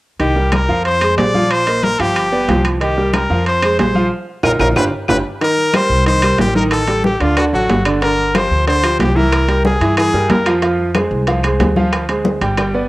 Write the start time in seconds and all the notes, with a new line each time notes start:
0.20 C2 D#3 D#4 G4 D#5, high conga, high timbale
0.36 G3 G4 A#4, high conga
0.52 A#4, high conga, high timbale, low timbale, claves
0.68 F2 F3 F4 F5
0.85 C5, high conga, high timbale
1.01 G#3 G#4 C5, high conga, high timbale, claves
1.18 A#1 G#3 G#4 C5 D5, high conga, high timbale, low timbale
1.34 F3 F4 F5, high conga
1.51 C5, high timbale, claves
1.67 A#3 A#4 D#5, high conga, high timbale
1.83 A#4, high conga, low timbale
1.99 G1 F3 F4 G4 F5, high conga, high timbale
2.16 high conga, high timbale, claves
2.32 B3 B4 D5, high conga
2.48 C2 F3 F4 F5, high conga, high timbale, low timbale
2.65 high conga, high timbale, claves
2.81 D#3 D#4 G4 D#5, high conga, high timbale
2.98 G3 G4 A#4, high conga
3.13 A#4, high conga, high timbale, low timbale, claves
3.30 F2 F3 F4 F5
3.46 C5, high conga, high timbale
3.62 G#3 G#4 C5, high conga, high timbale, claves
3.78 A#1 G#3 G#4 C5, high conga, high timbale, low timbale
3.95 F3 F4 F5, high conga
4.43 A#1 D#4 F4 A#4, low conga, high timbale, claves
4.59 A#1 D#4 F4 A#4, low conga, high timbale, claves
4.76 G1 D4 F4 G4 B4, low conga, high timbale, claves
5.08 G1 D4 F4 G4 B4, low conga, high timbale, claves
5.41 D#3 D#4 A#4 D#5, high bongo, high conga, high timbale
5.57 high conga
5.74 G3 G4 A#4 C5, high bongo, high conga, high timbale, low timbale, claves
5.90 C2, high bongo
6.06 D#3 D#4 C5 D#5, high bongo, high conga, high timbale
6.22 G3 G4 A#4, high bongo, high conga, high timbale, claves
6.38 A1 G4, high bongo, low bongo, high conga, high timbale, low timbale
6.55 D#3 D#4 A#4 D#5, high bongo, high conga
6.71 A4, high bongo, high conga, high timbale, claves
6.88 G3 G4 A4, high conga, high timbale
7.04 G4, high bongo, high conga, low timbale
7.20 D2 D3 D4 F4 D5, high bongo, high conga, high timbale
7.37 D3 D4 F#4 D5, high bongo, high conga, high timbale, claves
7.53 A1 F#3 F#4 A4, high bongo, high conga
7.69 G1, high bongo, low bongo, high conga, high timbale, low timbale
7.85 D3 D4 D5, high bongo, high conga, high timbale, claves
8.02 D3 D4 A#4 D5, high bongo, high conga, high timbale
8.18 high conga
8.35 F3 F4 G4 C5, high bongo, high conga, high timbale, low timbale, claves
8.50 D2, high bongo
8.67 D3 D4 C5 D5, high bongo, high conga, high timbale
8.83 F3 F4 G4, high bongo, high conga, high timbale, claves
8.99 C2 G4, high bongo, low bongo, high conga, high timbale, low timbale
9.15 E3 E4 A#4 E5, high bongo, high conga
9.32 high bongo, high conga, high timbale, claves
9.48 G3 G4 A#4, high conga, high timbale
9.65 G#4, high bongo, high conga, low timbale
9.81 G2 E3 E4 E5, high bongo, high conga, high timbale
9.97 E3 E4 G#4 E5, high bongo, high conga, high timbale, claves
10.13 G2 G3 G4 A#4, high bongo, high conga
10.29 F2 A#4, high bongo, low bongo, high conga, high timbale, low timbale
10.46 F3 F4 F5, high bongo, high conga, high timbale, claves
10.62 F3 F4 F5, high bongo, high conga, high timbale
10.78 high conga
10.95 G#3 G#4 C5, high bongo, high conga, high timbale, low timbale, claves
11.11 C2, high bongo
11.27 F3 F4 F5, high bongo, high conga, high timbale
11.43 G#3 G#4 C5, high bongo, high conga, high timbale, claves
11.59 D2, high bongo, low bongo, high conga, high timbale, low timbale
11.76 F3 F4 F5, high bongo, high conga
11.93 high bongo, high timbale, claves
12.09 G#3 G#4 C5, high conga, high timbale
12.25 high bongo, high conga, low timbale
12.41 G1 G3 G4 G5, high bongo, high conga, high timbale
12.57 G3 G4 G5, high bongo, high conga, high timbale, claves
12.74 B3 B4 D5, high bongo, high conga